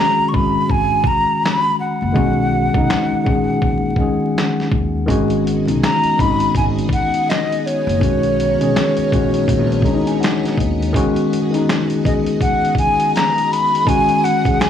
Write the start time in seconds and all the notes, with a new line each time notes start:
Already playing: D#3 G#3 C#4 F#4 A#5
0.19 muted upright bass stroke
0.29 D#3 C#6
0.33 G#1 G#3 C#4 F#4 B5, kick
0.70 G#1 G#5, kick
1.04 A#5, kick
1.44 B5, finger snap, snare
1.80 F#5
2.02 F#1
2.12 B1 D#3 G#3 C#4, kick
2.17 F#4
2.73 B1 D#3 G#3 C#4, kick
2.77 D#4
2.90 finger snap, snare
3.12 muted upright bass stroke
3.24 A#1 D#3 G#3 C#4, kick
3.28 G#4
3.62 A#1, kick
3.96 D#3 G#3 C#4, kick
4.02 G#4
4.38 finger snap, snare
4.60 snare
4.71 D#2, kick
5.06 G#1 D#3 G#3 B3 C#4 F#4 G#4 D#5, kick
5.10 F#4, closed hi-hat
5.30 closed hi-hat
5.47 closed hi-hat
5.65 B1 D#3 G#3 C#4, closed hi-hat
5.69 D#4
5.83 A#5, finger snap, snare, closed hi-hat
6.04 muted upright bass stroke, closed hi-hat
6.16 G#1 D#3 G#3 C#4 B5, kick, closed hi-hat
6.21 D#4
6.40 closed hi-hat
6.55 G#1 G#5, kick, closed hi-hat
6.79 closed hi-hat
6.89 kick, closed hi-hat
6.93 F#5
7.14 closed hi-hat
7.30 D#5, finger snap, snare, closed hi-hat
7.52 closed hi-hat
7.66 C#5, closed hi-hat
7.87 F#1, closed hi-hat
8.00 B1 D#3 G#3 C#4 D#4 A#4 C#5, kick, closed hi-hat
8.04 F#4
8.23 closed hi-hat
8.40 closed hi-hat
8.59 B1 D#3 G#3 C#4, closed hi-hat
8.63 G#4
8.76 finger snap, snare, closed hi-hat
8.97 muted upright bass stroke, closed hi-hat
9.11 A#1 D#3 G#3 C#4, kick, closed hi-hat
9.15 F#4
9.34 closed hi-hat
9.48 A#1, kick, closed hi-hat
9.72 closed hi-hat
9.82 D#3 G#3 C#4 A#5, kick, closed hi-hat
9.87 D4
9.94 D#4
10.07 G#5, closed hi-hat
10.20 F#5, closed hi-hat
10.24 finger snap, snare
10.45 snare, closed hi-hat
10.57 D#2 D#5, kick, closed hi-hat
10.82 closed hi-hat
10.92 D#3 G#3 C#4 F#4 G#4 D#5, kick, closed hi-hat
10.97 F#4
11.16 closed hi-hat
11.33 closed hi-hat
11.51 D#3 G#3 C#4, closed hi-hat
11.55 D#4
11.69 finger snap, snare, closed hi-hat
11.90 closed hi-hat
12.04 D#3 G#3 C#4 D#5, kick, closed hi-hat
12.08 G#4
12.26 closed hi-hat
12.41 F#5, kick, closed hi-hat
12.65 closed hi-hat
12.75 G#5, kick, closed hi-hat
13.00 closed hi-hat
13.15 A#5, finger snap, snare, closed hi-hat
13.38 closed hi-hat
13.52 B5, closed hi-hat
13.75 closed hi-hat
13.85 D#3 G#3 C#4 G#5, kick, closed hi-hat
13.89 F#4
14.09 closed hi-hat
14.24 F#5, closed hi-hat
14.43 D#3 G#3 C#4, kick, closed hi-hat
14.48 G#4
14.61 G#5, finger snap, snare, closed hi-hat